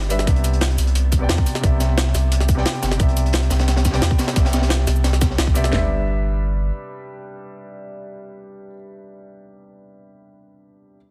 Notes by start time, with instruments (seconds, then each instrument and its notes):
Already playing: sub bass G1, grand piano G3 D4 B4 E5 G5
0.02 closed hi-hat
0.09 grand piano G3 D4 B4 E5, closed hi-hat, open hi-hat, cabasa
0.19 snare
0.25 sub bass C2, grand piano C3 B3 D5, kick, closed hi-hat
0.30 grand piano E5
0.36 closed hi-hat
0.44 closed hi-hat, cabasa
0.53 closed hi-hat
0.61 snare, closed hi-hat
0.70 closed hi-hat
0.78 sub bass C2, closed hi-hat, open hi-hat, cabasa
0.87 closed hi-hat
0.95 closed hi-hat
1.12 kick, closed hi-hat, cabasa
1.19 grand piano C3 B3 D5
1.24 grand piano G5
1.29 sub bass E2, snare, closed hi-hat, open hi-hat
1.38 kick, closed hi-hat
1.46 closed hi-hat, open hi-hat, cabasa
1.55 snare
1.61 sub bass C2, grand piano C3 B3 D5, kick, closed hi-hat
1.66 grand piano E5
1.80 snare, closed hi-hat, cabasa
1.98 snare, closed hi-hat
2.07 snare
2.14 sub bass C2, snare, closed hi-hat, open hi-hat, cabasa
2.32 closed hi-hat
2.40 snare
2.49 kick, closed hi-hat, cabasa
2.55 grand piano C3 B3 D5, snare
2.60 grand piano G5
2.65 snare, closed hi-hat
2.74 closed hi-hat
2.83 sub bass G1, snare, closed hi-hat, open hi-hat, cabasa
2.92 snare, closed hi-hat
2.97 sub bass C2, grand piano C3 B3 D5, kick, closed hi-hat
3.02 grand piano E5
3.09 closed hi-hat
3.17 closed hi-hat, cabasa
3.26 closed hi-hat
3.33 snare, closed hi-hat
3.42 closed hi-hat
3.50 sub bass C2, snare, closed hi-hat, open hi-hat, cabasa
3.59 snare, closed hi-hat
3.68 snare, closed hi-hat
3.77 snare, closed hi-hat
3.85 kick, snare, closed hi-hat, cabasa
3.91 grand piano C3 B3 D5, snare, closed hi-hat
3.96 grand piano G5
4.01 sub bass E2, snare, closed hi-hat, open hi-hat
4.11 kick, closed hi-hat
4.18 snare, closed hi-hat, open hi-hat, cabasa
4.27 snare, closed hi-hat
4.33 sub bass C2, grand piano C3 B3 D5, kick, snare, closed hi-hat
4.39 grand piano E5
4.45 snare, closed hi-hat
4.53 snare, closed hi-hat, cabasa
4.62 snare, closed hi-hat
4.69 snare, closed hi-hat
4.79 snare
4.87 sub bass C2, snare, closed hi-hat, open hi-hat, cabasa
4.96 cabasa
5.04 snare, closed hi-hat
5.13 snare
5.21 kick, snare, closed hi-hat, cabasa
5.31 snare
5.38 sub bass C2, snare, closed hi-hat
5.47 kick, closed hi-hat
5.54 grand piano C3 B3 D5 E5, closed hi-hat, open hi-hat, cabasa
5.64 snare
5.69 sub bass G1, grand piano G3 D4
5.73 grand piano B4 E5, snare, floor tom